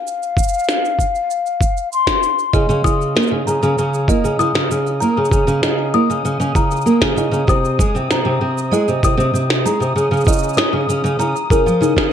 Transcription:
Already playing: flute F5
0.07 cabasa
0.23 cabasa
0.37 kick, cabasa
0.43 cabasa
0.48 cabasa
0.54 cabasa
0.59 cabasa
0.64 cabasa
0.69 snare, cabasa
0.85 cabasa
0.99 kick, cabasa
1.15 cabasa
1.31 cabasa
1.46 cabasa
1.61 kick, cabasa
1.77 cabasa
1.92 flute C6, cabasa
2.07 kick, snare, cabasa
2.23 cabasa
2.39 cabasa
2.53 twelve-string acoustic guitar C#3, kalimba D#5, synth texture D#6, kick, cabasa
2.69 twelve-string acoustic guitar C#3, cabasa
2.84 twelve-string acoustic guitar C#3, kalimba D#6, kick, cabasa
3.02 cabasa
3.15 twelve-string acoustic guitar A#3, snare, cabasa
3.22 cabasa
3.27 cabasa
3.31 twelve-string acoustic guitar C#3
3.47 twelve-string acoustic guitar C#3, kalimba A#5, cabasa
3.63 twelve-string acoustic guitar C#3, cabasa
3.78 twelve-string acoustic guitar C#3, cabasa
3.94 cabasa
4.08 twelve-string acoustic guitar A#3, kalimba D#5, kick, cabasa
4.24 twelve-string acoustic guitar C#3, cabasa
4.39 twelve-string acoustic guitar C#3, kalimba D#6, cabasa
4.55 twelve-string acoustic guitar C#3, snare
4.71 twelve-string acoustic guitar C#3, cabasa
4.87 cabasa
5.00 twelve-string acoustic guitar A#3, kalimba A#5, cabasa
5.17 twelve-string acoustic guitar C#3
5.25 cabasa
5.31 twelve-string acoustic guitar C#3, kick, cabasa
5.47 twelve-string acoustic guitar C#3, cabasa
5.63 kalimba D#5, snare, cabasa
5.94 twelve-string acoustic guitar A#3, kalimba D#6
6.10 twelve-string acoustic guitar C#3, cabasa
6.25 twelve-string acoustic guitar C#3, cabasa
6.40 twelve-string acoustic guitar C#3, cabasa
6.55 twelve-string acoustic guitar C#3, kalimba A#5, kick, cabasa
6.71 cabasa
6.76 cabasa
6.81 cabasa
6.86 twelve-string acoustic guitar A#3, cabasa
7.01 twelve-string acoustic guitar C#3, kick, snare
7.16 twelve-string acoustic guitar C#3, kalimba D#5, cabasa
7.31 twelve-string acoustic guitar C#3, cabasa
7.47 twelve-string acoustic guitar C3, kalimba D#6, kick, cabasa
7.65 cabasa
7.79 twelve-string acoustic guitar G#3, kick, cabasa
7.95 twelve-string acoustic guitar C3, cabasa
8.11 twelve-string acoustic guitar C3, kalimba A#5, snare, cabasa
8.25 twelve-string acoustic guitar C3
8.41 twelve-string acoustic guitar C3
8.58 cabasa
8.71 twelve-string acoustic guitar G#3, kalimba D#5, cabasa
8.88 twelve-string acoustic guitar C3, cabasa
9.03 twelve-string acoustic guitar C3, kalimba D#6, kick, cabasa
9.17 twelve-string acoustic guitar C3, cabasa
9.34 twelve-string acoustic guitar C3, cabasa
9.50 snare
9.65 twelve-string acoustic guitar G#3, kalimba A#5, cabasa
9.80 twelve-string acoustic guitar C3, cabasa
9.96 twelve-string acoustic guitar C#3, cabasa
10.11 twelve-string acoustic guitar C#3, cabasa
10.17 cabasa
10.20 cabasa
10.24 twelve-string acoustic guitar C#3, kalimba D#5, kick, cabasa
10.28 cabasa
10.32 cabasa
10.36 cabasa
10.38 cabasa
10.43 cabasa
10.49 cabasa
10.54 twelve-string acoustic guitar C#4, kalimba D#6, cabasa
10.58 snare, cabasa
10.73 twelve-string acoustic guitar C#3
10.89 twelve-string acoustic guitar C#3, cabasa
11.04 twelve-string acoustic guitar C#3, cabasa
11.19 twelve-string acoustic guitar C#3, kalimba A#5, cabasa
11.36 cabasa
11.50 twelve-string acoustic guitar C#3, kalimba A#4, kick, cabasa
11.66 twelve-string acoustic guitar F3, cabasa
11.81 twelve-string acoustic guitar C#3, kalimba D#4, cabasa
11.96 twelve-string acoustic guitar C#3, kick, snare

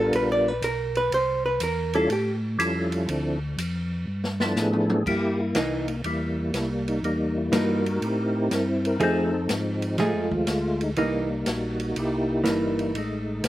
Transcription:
Already playing: tonewheel organ A1 G3 B3 D4 F4 A#4, hollow-body jazz guitar A4
0.12 tonewheel organ A#1, hollow-body jazz guitar B4, ride
0.32 hollow-body jazz guitar D5
0.48 hollow-body jazz guitar B4
0.62 tonewheel organ B1, hollow-body jazz guitar A#4, hi-hat pedal, ride
0.95 hollow-body jazz guitar B4, ride
1.11 tonewheel organ C2, hollow-body jazz guitar C5, ride
1.46 hollow-body jazz guitar B4
1.60 tonewheel organ E2, hollow-body jazz guitar A#4, hi-hat pedal, ride
1.93 tonewheel organ G3 C#4 E4 F4 A4, hollow-body jazz guitar A4, ride
2.10 tonewheel organ A2, hollow-body jazz guitar G4, ride
2.59 tonewheel organ F2 G3 C#4 E4 F4 A4, hi-hat pedal, ride
2.92 ride
3.08 tonewheel organ D2 F3 C4 D4 E4 A4, ride
3.57 tonewheel organ F2, hi-hat pedal, ride
4.07 tonewheel organ G2
4.24 snare
4.40 tonewheel organ F3 B3 D4 E4 A4, snare
4.56 tonewheel organ A2 G#4, snare, hi-hat pedal
4.73 mid tom
4.90 tonewheel organ G#4, mid tom
5.06 tonewheel organ G2 A#3 E4 G4, kick, crash
5.40 tonewheel organ E4
5.55 tonewheel organ C2 D#4, hollow-body jazz guitar E3 A#3 D#4, snare, hi-hat pedal, ride
5.88 tonewheel organ D#4, ride
6.04 tonewheel organ E2 G3 A#3 E4, ride
6.53 tonewheel organ C2 E4, snare, hi-hat pedal, ride
6.88 tonewheel organ D#4, ride
7.02 tonewheel organ E2 G3 A#3 D#4, ride
7.37 tonewheel organ E4
7.52 tonewheel organ G2 D#4 F#4 A#4, hollow-body jazz guitar E3 A#3 D#4, snare, hi-hat pedal, ride
7.86 ride
8.01 tonewheel organ A2 C4 E4 G4, ride
8.51 tonewheel organ G2 A#4, snare, hi-hat pedal, ride
8.85 tonewheel organ A#4, ride
9.00 tonewheel organ F2 C4 D#4 A4, hollow-body jazz guitar F3 A3 D#4 G#4, ride
9.49 tonewheel organ G#2 F3 G#3 D#4, snare, hi-hat pedal, ride
9.82 ride
9.98 tonewheel organ A2 G#3 A3 F4, hollow-body jazz guitar F3 A3 D#4 G#4, snare, ride
10.15 tonewheel organ F2
10.31 tonewheel organ D#2, kick
10.47 tonewheel organ D2 F4, snare, hi-hat pedal, ride
10.81 tonewheel organ D#4, ride
10.96 tonewheel organ C2 G3 A#3 D#4, hollow-body jazz guitar E3 A#3 D#4, ride
11.46 tonewheel organ A#1 A#3 D#4 F#4, snare, hi-hat pedal, ride
11.80 ride
11.96 tonewheel organ C2 A#3 E4 G4, ride
12.44 tonewheel organ G1 A#3, hollow-body jazz guitar E3 A#3, snare, hi-hat pedal, ride
12.48 tonewheel organ G3 D#4
12.79 ride
12.94 tonewheel organ A1 G#3 A3, ride
12.98 tonewheel organ D#4
13.43 tonewheel organ C2, snare, hi-hat pedal, ride

